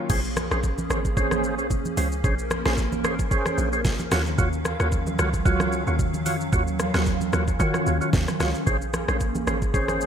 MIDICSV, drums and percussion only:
0, 0, Header, 1, 2, 480
1, 0, Start_track
1, 0, Key_signature, -5, "minor"
1, 0, Tempo, 535714
1, 88, Time_signature, 4, 2, 24, 8
1, 9015, End_track
2, 0, Start_track
2, 0, Title_t, "Drums"
2, 86, Note_on_c, 9, 49, 103
2, 87, Note_on_c, 9, 82, 85
2, 88, Note_on_c, 9, 36, 125
2, 89, Note_on_c, 9, 64, 73
2, 176, Note_off_c, 9, 49, 0
2, 176, Note_off_c, 9, 82, 0
2, 177, Note_off_c, 9, 36, 0
2, 179, Note_off_c, 9, 64, 0
2, 219, Note_on_c, 9, 82, 55
2, 308, Note_off_c, 9, 82, 0
2, 328, Note_on_c, 9, 63, 77
2, 328, Note_on_c, 9, 82, 100
2, 329, Note_on_c, 9, 37, 105
2, 417, Note_off_c, 9, 63, 0
2, 417, Note_off_c, 9, 82, 0
2, 419, Note_off_c, 9, 37, 0
2, 460, Note_on_c, 9, 37, 103
2, 461, Note_on_c, 9, 82, 57
2, 550, Note_off_c, 9, 37, 0
2, 551, Note_off_c, 9, 82, 0
2, 568, Note_on_c, 9, 82, 77
2, 569, Note_on_c, 9, 36, 84
2, 657, Note_off_c, 9, 82, 0
2, 659, Note_off_c, 9, 36, 0
2, 700, Note_on_c, 9, 82, 59
2, 702, Note_on_c, 9, 63, 85
2, 790, Note_off_c, 9, 82, 0
2, 792, Note_off_c, 9, 63, 0
2, 808, Note_on_c, 9, 63, 75
2, 808, Note_on_c, 9, 82, 88
2, 810, Note_on_c, 9, 37, 107
2, 897, Note_off_c, 9, 63, 0
2, 898, Note_off_c, 9, 82, 0
2, 900, Note_off_c, 9, 37, 0
2, 940, Note_on_c, 9, 36, 87
2, 941, Note_on_c, 9, 82, 68
2, 1030, Note_off_c, 9, 36, 0
2, 1030, Note_off_c, 9, 82, 0
2, 1048, Note_on_c, 9, 36, 127
2, 1049, Note_on_c, 9, 82, 74
2, 1137, Note_off_c, 9, 36, 0
2, 1139, Note_off_c, 9, 82, 0
2, 1176, Note_on_c, 9, 37, 99
2, 1181, Note_on_c, 9, 82, 55
2, 1182, Note_on_c, 9, 63, 85
2, 1266, Note_off_c, 9, 37, 0
2, 1270, Note_off_c, 9, 82, 0
2, 1271, Note_off_c, 9, 63, 0
2, 1289, Note_on_c, 9, 82, 79
2, 1378, Note_off_c, 9, 82, 0
2, 1420, Note_on_c, 9, 82, 52
2, 1509, Note_off_c, 9, 82, 0
2, 1528, Note_on_c, 9, 36, 105
2, 1528, Note_on_c, 9, 82, 78
2, 1529, Note_on_c, 9, 64, 71
2, 1617, Note_off_c, 9, 36, 0
2, 1617, Note_off_c, 9, 82, 0
2, 1618, Note_off_c, 9, 64, 0
2, 1660, Note_on_c, 9, 82, 55
2, 1662, Note_on_c, 9, 63, 70
2, 1750, Note_off_c, 9, 82, 0
2, 1752, Note_off_c, 9, 63, 0
2, 1768, Note_on_c, 9, 46, 87
2, 1768, Note_on_c, 9, 82, 104
2, 1772, Note_on_c, 9, 63, 84
2, 1858, Note_off_c, 9, 46, 0
2, 1858, Note_off_c, 9, 82, 0
2, 1862, Note_off_c, 9, 63, 0
2, 1899, Note_on_c, 9, 82, 58
2, 1988, Note_off_c, 9, 82, 0
2, 2008, Note_on_c, 9, 36, 123
2, 2008, Note_on_c, 9, 82, 82
2, 2009, Note_on_c, 9, 64, 73
2, 2097, Note_off_c, 9, 82, 0
2, 2098, Note_off_c, 9, 36, 0
2, 2098, Note_off_c, 9, 64, 0
2, 2139, Note_on_c, 9, 82, 54
2, 2228, Note_off_c, 9, 82, 0
2, 2245, Note_on_c, 9, 63, 80
2, 2247, Note_on_c, 9, 82, 96
2, 2248, Note_on_c, 9, 37, 104
2, 2334, Note_off_c, 9, 63, 0
2, 2336, Note_off_c, 9, 82, 0
2, 2338, Note_off_c, 9, 37, 0
2, 2379, Note_on_c, 9, 37, 103
2, 2379, Note_on_c, 9, 38, 75
2, 2380, Note_on_c, 9, 82, 56
2, 2469, Note_off_c, 9, 37, 0
2, 2469, Note_off_c, 9, 38, 0
2, 2470, Note_off_c, 9, 82, 0
2, 2486, Note_on_c, 9, 82, 78
2, 2489, Note_on_c, 9, 36, 85
2, 2575, Note_off_c, 9, 82, 0
2, 2579, Note_off_c, 9, 36, 0
2, 2618, Note_on_c, 9, 82, 56
2, 2620, Note_on_c, 9, 63, 82
2, 2708, Note_off_c, 9, 82, 0
2, 2709, Note_off_c, 9, 63, 0
2, 2726, Note_on_c, 9, 63, 76
2, 2727, Note_on_c, 9, 82, 81
2, 2728, Note_on_c, 9, 37, 109
2, 2815, Note_off_c, 9, 63, 0
2, 2816, Note_off_c, 9, 82, 0
2, 2818, Note_off_c, 9, 37, 0
2, 2859, Note_on_c, 9, 82, 70
2, 2860, Note_on_c, 9, 36, 89
2, 2949, Note_off_c, 9, 82, 0
2, 2950, Note_off_c, 9, 36, 0
2, 2967, Note_on_c, 9, 36, 123
2, 2968, Note_on_c, 9, 82, 78
2, 3057, Note_off_c, 9, 36, 0
2, 3058, Note_off_c, 9, 82, 0
2, 3097, Note_on_c, 9, 37, 99
2, 3101, Note_on_c, 9, 63, 82
2, 3101, Note_on_c, 9, 82, 55
2, 3186, Note_off_c, 9, 37, 0
2, 3190, Note_off_c, 9, 82, 0
2, 3191, Note_off_c, 9, 63, 0
2, 3208, Note_on_c, 9, 82, 85
2, 3298, Note_off_c, 9, 82, 0
2, 3339, Note_on_c, 9, 82, 50
2, 3429, Note_off_c, 9, 82, 0
2, 3446, Note_on_c, 9, 38, 70
2, 3447, Note_on_c, 9, 64, 74
2, 3448, Note_on_c, 9, 36, 108
2, 3448, Note_on_c, 9, 82, 82
2, 3536, Note_off_c, 9, 38, 0
2, 3537, Note_off_c, 9, 36, 0
2, 3537, Note_off_c, 9, 64, 0
2, 3538, Note_off_c, 9, 82, 0
2, 3580, Note_on_c, 9, 63, 73
2, 3580, Note_on_c, 9, 82, 54
2, 3670, Note_off_c, 9, 63, 0
2, 3670, Note_off_c, 9, 82, 0
2, 3687, Note_on_c, 9, 46, 86
2, 3687, Note_on_c, 9, 82, 108
2, 3688, Note_on_c, 9, 37, 96
2, 3688, Note_on_c, 9, 38, 74
2, 3689, Note_on_c, 9, 63, 85
2, 3776, Note_off_c, 9, 46, 0
2, 3776, Note_off_c, 9, 82, 0
2, 3778, Note_off_c, 9, 37, 0
2, 3778, Note_off_c, 9, 38, 0
2, 3778, Note_off_c, 9, 63, 0
2, 3820, Note_on_c, 9, 82, 56
2, 3909, Note_off_c, 9, 82, 0
2, 3928, Note_on_c, 9, 36, 118
2, 3928, Note_on_c, 9, 82, 87
2, 3929, Note_on_c, 9, 64, 76
2, 4018, Note_off_c, 9, 36, 0
2, 4018, Note_off_c, 9, 82, 0
2, 4019, Note_off_c, 9, 64, 0
2, 4058, Note_on_c, 9, 82, 57
2, 4148, Note_off_c, 9, 82, 0
2, 4166, Note_on_c, 9, 82, 98
2, 4167, Note_on_c, 9, 63, 83
2, 4168, Note_on_c, 9, 37, 101
2, 4256, Note_off_c, 9, 82, 0
2, 4257, Note_off_c, 9, 63, 0
2, 4258, Note_off_c, 9, 37, 0
2, 4300, Note_on_c, 9, 37, 99
2, 4301, Note_on_c, 9, 82, 59
2, 4389, Note_off_c, 9, 37, 0
2, 4390, Note_off_c, 9, 82, 0
2, 4407, Note_on_c, 9, 82, 77
2, 4410, Note_on_c, 9, 36, 89
2, 4497, Note_off_c, 9, 82, 0
2, 4499, Note_off_c, 9, 36, 0
2, 4540, Note_on_c, 9, 82, 57
2, 4542, Note_on_c, 9, 63, 84
2, 4630, Note_off_c, 9, 82, 0
2, 4631, Note_off_c, 9, 63, 0
2, 4646, Note_on_c, 9, 63, 73
2, 4648, Note_on_c, 9, 82, 89
2, 4650, Note_on_c, 9, 37, 112
2, 4736, Note_off_c, 9, 63, 0
2, 4738, Note_off_c, 9, 82, 0
2, 4740, Note_off_c, 9, 37, 0
2, 4780, Note_on_c, 9, 82, 68
2, 4781, Note_on_c, 9, 36, 89
2, 4870, Note_off_c, 9, 36, 0
2, 4870, Note_off_c, 9, 82, 0
2, 4888, Note_on_c, 9, 36, 121
2, 4889, Note_on_c, 9, 82, 78
2, 4978, Note_off_c, 9, 36, 0
2, 4979, Note_off_c, 9, 82, 0
2, 5017, Note_on_c, 9, 37, 96
2, 5019, Note_on_c, 9, 63, 85
2, 5021, Note_on_c, 9, 82, 57
2, 5107, Note_off_c, 9, 37, 0
2, 5109, Note_off_c, 9, 63, 0
2, 5111, Note_off_c, 9, 82, 0
2, 5129, Note_on_c, 9, 82, 79
2, 5218, Note_off_c, 9, 82, 0
2, 5260, Note_on_c, 9, 82, 51
2, 5349, Note_off_c, 9, 82, 0
2, 5368, Note_on_c, 9, 36, 106
2, 5368, Note_on_c, 9, 64, 71
2, 5368, Note_on_c, 9, 82, 78
2, 5457, Note_off_c, 9, 36, 0
2, 5458, Note_off_c, 9, 64, 0
2, 5458, Note_off_c, 9, 82, 0
2, 5500, Note_on_c, 9, 82, 57
2, 5502, Note_on_c, 9, 63, 70
2, 5590, Note_off_c, 9, 82, 0
2, 5591, Note_off_c, 9, 63, 0
2, 5608, Note_on_c, 9, 46, 89
2, 5608, Note_on_c, 9, 82, 105
2, 5611, Note_on_c, 9, 63, 86
2, 5698, Note_off_c, 9, 46, 0
2, 5698, Note_off_c, 9, 82, 0
2, 5701, Note_off_c, 9, 63, 0
2, 5740, Note_on_c, 9, 82, 58
2, 5830, Note_off_c, 9, 82, 0
2, 5848, Note_on_c, 9, 36, 124
2, 5848, Note_on_c, 9, 82, 82
2, 5849, Note_on_c, 9, 64, 74
2, 5938, Note_off_c, 9, 36, 0
2, 5938, Note_off_c, 9, 64, 0
2, 5938, Note_off_c, 9, 82, 0
2, 5980, Note_on_c, 9, 82, 56
2, 6069, Note_off_c, 9, 82, 0
2, 6087, Note_on_c, 9, 82, 98
2, 6088, Note_on_c, 9, 37, 102
2, 6088, Note_on_c, 9, 63, 80
2, 6176, Note_off_c, 9, 82, 0
2, 6177, Note_off_c, 9, 63, 0
2, 6178, Note_off_c, 9, 37, 0
2, 6220, Note_on_c, 9, 37, 105
2, 6220, Note_on_c, 9, 38, 73
2, 6221, Note_on_c, 9, 82, 58
2, 6310, Note_off_c, 9, 37, 0
2, 6310, Note_off_c, 9, 38, 0
2, 6311, Note_off_c, 9, 82, 0
2, 6327, Note_on_c, 9, 82, 78
2, 6329, Note_on_c, 9, 36, 90
2, 6416, Note_off_c, 9, 82, 0
2, 6419, Note_off_c, 9, 36, 0
2, 6460, Note_on_c, 9, 82, 58
2, 6461, Note_on_c, 9, 63, 88
2, 6549, Note_off_c, 9, 82, 0
2, 6551, Note_off_c, 9, 63, 0
2, 6564, Note_on_c, 9, 63, 75
2, 6567, Note_on_c, 9, 82, 87
2, 6569, Note_on_c, 9, 37, 106
2, 6654, Note_off_c, 9, 63, 0
2, 6656, Note_off_c, 9, 82, 0
2, 6658, Note_off_c, 9, 37, 0
2, 6698, Note_on_c, 9, 63, 51
2, 6698, Note_on_c, 9, 82, 68
2, 6700, Note_on_c, 9, 36, 86
2, 6788, Note_off_c, 9, 63, 0
2, 6788, Note_off_c, 9, 82, 0
2, 6790, Note_off_c, 9, 36, 0
2, 6807, Note_on_c, 9, 36, 125
2, 6808, Note_on_c, 9, 82, 75
2, 6897, Note_off_c, 9, 36, 0
2, 6897, Note_off_c, 9, 82, 0
2, 6935, Note_on_c, 9, 37, 95
2, 6939, Note_on_c, 9, 63, 84
2, 6940, Note_on_c, 9, 82, 57
2, 7025, Note_off_c, 9, 37, 0
2, 7028, Note_off_c, 9, 63, 0
2, 7029, Note_off_c, 9, 82, 0
2, 7047, Note_on_c, 9, 82, 84
2, 7137, Note_off_c, 9, 82, 0
2, 7179, Note_on_c, 9, 82, 53
2, 7269, Note_off_c, 9, 82, 0
2, 7285, Note_on_c, 9, 38, 70
2, 7287, Note_on_c, 9, 64, 72
2, 7287, Note_on_c, 9, 82, 78
2, 7288, Note_on_c, 9, 36, 101
2, 7375, Note_off_c, 9, 38, 0
2, 7377, Note_off_c, 9, 36, 0
2, 7377, Note_off_c, 9, 64, 0
2, 7377, Note_off_c, 9, 82, 0
2, 7420, Note_on_c, 9, 63, 73
2, 7420, Note_on_c, 9, 82, 55
2, 7421, Note_on_c, 9, 37, 86
2, 7509, Note_off_c, 9, 82, 0
2, 7510, Note_off_c, 9, 63, 0
2, 7511, Note_off_c, 9, 37, 0
2, 7528, Note_on_c, 9, 82, 108
2, 7529, Note_on_c, 9, 37, 99
2, 7529, Note_on_c, 9, 38, 69
2, 7529, Note_on_c, 9, 63, 82
2, 7618, Note_off_c, 9, 63, 0
2, 7618, Note_off_c, 9, 82, 0
2, 7619, Note_off_c, 9, 37, 0
2, 7619, Note_off_c, 9, 38, 0
2, 7659, Note_on_c, 9, 82, 58
2, 7748, Note_off_c, 9, 82, 0
2, 7767, Note_on_c, 9, 82, 86
2, 7768, Note_on_c, 9, 36, 118
2, 7768, Note_on_c, 9, 64, 70
2, 7857, Note_off_c, 9, 64, 0
2, 7857, Note_off_c, 9, 82, 0
2, 7858, Note_off_c, 9, 36, 0
2, 7898, Note_on_c, 9, 82, 56
2, 7988, Note_off_c, 9, 82, 0
2, 8005, Note_on_c, 9, 63, 80
2, 8006, Note_on_c, 9, 82, 98
2, 8008, Note_on_c, 9, 37, 105
2, 8095, Note_off_c, 9, 63, 0
2, 8096, Note_off_c, 9, 82, 0
2, 8097, Note_off_c, 9, 37, 0
2, 8139, Note_on_c, 9, 37, 100
2, 8140, Note_on_c, 9, 82, 55
2, 8229, Note_off_c, 9, 37, 0
2, 8230, Note_off_c, 9, 82, 0
2, 8246, Note_on_c, 9, 82, 79
2, 8249, Note_on_c, 9, 36, 89
2, 8335, Note_off_c, 9, 82, 0
2, 8339, Note_off_c, 9, 36, 0
2, 8378, Note_on_c, 9, 82, 57
2, 8381, Note_on_c, 9, 63, 84
2, 8467, Note_off_c, 9, 82, 0
2, 8470, Note_off_c, 9, 63, 0
2, 8486, Note_on_c, 9, 63, 73
2, 8487, Note_on_c, 9, 82, 83
2, 8489, Note_on_c, 9, 37, 109
2, 8576, Note_off_c, 9, 63, 0
2, 8576, Note_off_c, 9, 82, 0
2, 8578, Note_off_c, 9, 37, 0
2, 8619, Note_on_c, 9, 82, 71
2, 8620, Note_on_c, 9, 36, 86
2, 8709, Note_off_c, 9, 82, 0
2, 8710, Note_off_c, 9, 36, 0
2, 8727, Note_on_c, 9, 36, 119
2, 8728, Note_on_c, 9, 82, 77
2, 8817, Note_off_c, 9, 36, 0
2, 8818, Note_off_c, 9, 82, 0
2, 8856, Note_on_c, 9, 37, 94
2, 8858, Note_on_c, 9, 63, 84
2, 8860, Note_on_c, 9, 82, 55
2, 8945, Note_off_c, 9, 37, 0
2, 8948, Note_off_c, 9, 63, 0
2, 8950, Note_off_c, 9, 82, 0
2, 8968, Note_on_c, 9, 82, 82
2, 9015, Note_off_c, 9, 82, 0
2, 9015, End_track
0, 0, End_of_file